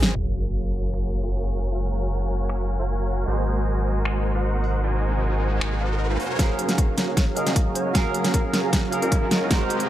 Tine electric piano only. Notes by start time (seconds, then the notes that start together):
0.14 F#3 G#4 A#4 F5
3.25 G#3 F#4 A#4
3.29 C5
6.37 F#3 G#4 F5
6.41 A#4
7.35 F#3 G#4 F5
7.39 A#4
7.93 F#3 G#4 F5
7.97 A#4
8.90 F#3 G#4 F5
8.94 A#4
9.49 G#3 F#4 A#4 C5